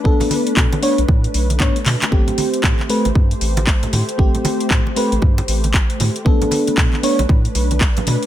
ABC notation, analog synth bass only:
X:1
M:4/4
L:1/16
Q:"Swing 16ths" 1/4=116
K:Am
V:1 name="Analog synth bass" clef=bass
B,,, z3 B,, z2 B,,, A,, z B,,,2 ^G,, z B,, z | A,,, z3 A,, z2 A,,, G,, z A,,,2 z2 A,, z | A,,, z3 A,, z2 A,,, G,, z A,,,2 z2 A,, z | B,,, z3 B,, z2 B,,, A,, z B,,,2 z2 B,, z |]